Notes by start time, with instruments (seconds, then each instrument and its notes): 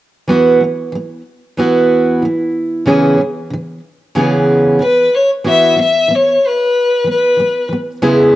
0.28 steel-string acoustic guitar E3 B3 E4 F#4
0.60 steel-string acoustic guitar E3 B3
0.92 steel-string acoustic guitar E3 B3
1.57 steel-string acoustic guitar E3 B3 E4 F#4
2.22 steel-string acoustic guitar E3 B3
2.86 steel-string acoustic guitar C#3 E3 B3 C#4 G#4
3.18 steel-string acoustic guitar C#3 E3
3.50 steel-string acoustic guitar C#3 E3
4.15 steel-string acoustic guitar C#3 E3 B3 C#4 G#4
4.79 steel-string acoustic guitar C#3 E3, violin B4
5.15 violin C#5
5.44 steel-string acoustic guitar E3 B3 E4 F#4
5.49 violin E5
5.76 steel-string acoustic guitar E3 B3
5.82 violin E5
6.08 steel-string acoustic guitar E3 B3
6.15 violin C#5
6.47 violin B4
7.04 steel-string acoustic guitar E3 B3
7.11 violin B4
7.37 steel-string acoustic guitar E3 B3
7.69 steel-string acoustic guitar E3 B3
8.02 steel-string acoustic guitar C#3 G#3 B3 E4 G#4